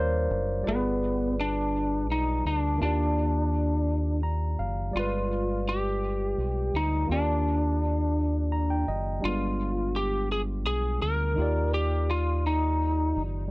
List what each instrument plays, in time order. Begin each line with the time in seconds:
Already playing: fingered electric bass D#2, tine electric piano G3 D4 F4 A#4 C5 C#5 D5 F5
0.31 fingered electric bass F#1
0.62 tine electric piano G3 F4 D5
0.67 fingered electric bass G1, lead electric guitar B3, tine electric piano G#4 A#4
0.76 tine electric piano B4
1.41 lead electric guitar D4
2.10 fingered electric bass B1, lead electric guitar D#4
2.45 fingered electric bass D2, lead electric guitar D4
2.77 tine electric piano D#3 A#3 F4
2.81 fingered electric bass D#2, lead electric guitar D4, tine electric piano G4 D5
4.23 tine electric piano A#5
4.59 fingered electric bass F#1, tine electric piano F5
4.91 fingered electric bass G1, tine electric piano G3 F4 D5
4.97 tine electric piano G#3 B4, lead electric guitar F4
5.69 lead electric guitar G4
6.38 fingered electric bass B1
6.74 fingered electric bass D2, lead electric guitar D#4
7.06 fingered electric bass D#2, tine electric piano D#3 A#3 F4
7.12 lead electric guitar D4, tine electric piano G4 D5
8.52 tine electric piano A#5
8.70 tine electric piano G5
8.88 fingered electric bass F#1, tine electric piano D#5
9.21 fingered electric bass G1, tine electric piano G3 D4 F4
9.25 tine electric piano G#3 B3, lead electric guitar F4
9.96 lead electric guitar G4
10.32 lead electric guitar G#4
10.66 fingered electric bass B1, lead electric guitar G#4
11.02 fingered electric bass D2, lead electric guitar A#4
11.34 fingered electric bass D#2, tine electric piano D#3 D#4
11.38 tine electric piano F4 G4 D5
11.74 lead electric guitar G4
12.11 lead electric guitar F4
12.47 lead electric guitar D#4
13.16 fingered electric bass F#1